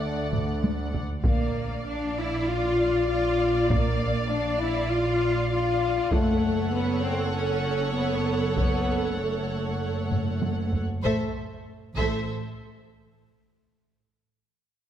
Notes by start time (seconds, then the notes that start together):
Already playing: D2 A3 D5 F#5
0.33 taiko low-mid
0.64 taiko high
0.94 taiko low
1.24 A#1 A#3 D5 F5, taiko
1.87 D4
2.18 E4
2.47 F4
3.08 F4
3.69 A#3, taiko
4.28 D4
4.59 E4
4.90 F4
5.51 F4
6.12 F#1 A3 A4 C#5 F#5, taiko
6.72 B3
7.03 C4
7.34 C#4
7.94 B3
8.55 B3, taiko
9.17 A3
10.12 taiko low-mid
10.42 taiko high
10.73 taiko low
11.03 A1 A3 A4 C5 E5, taiko
11.96 A1 A3 A4 C5 E5, taiko